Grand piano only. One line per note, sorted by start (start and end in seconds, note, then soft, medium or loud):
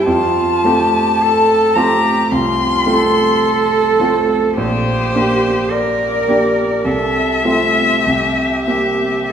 0.00 0.10 G4 soft
0.06 0.63 F2 medium
0.64 1.73 A3 soft
0.64 1.73 C4 soft
0.64 1.73 F4 soft
1.76 2.28 A3 soft
1.76 2.28 C4 soft
1.76 2.28 F4 soft
2.31 2.86 C2 soft
2.86 3.96 A3 soft
2.86 3.97 C4 soft
2.86 3.97 F4 soft
3.99 4.53 A3 soft
3.99 4.53 C4 soft
3.99 4.54 F4 soft
4.57 5.13 A#1 medium
5.15 6.24 A#3 soft
5.15 6.24 D4 soft
5.15 6.25 G4 soft
6.28 6.82 A#3 soft
6.28 6.83 D4 soft
6.28 6.83 G4 soft
6.85 7.43 C2 soft
7.45 8.01 A3 soft
7.45 8.01 C4 soft
7.45 8.01 F4 soft
8.06 8.65 C2 soft
8.67 9.26 A#3 soft
8.67 9.26 C4 soft
8.67 9.27 G4 soft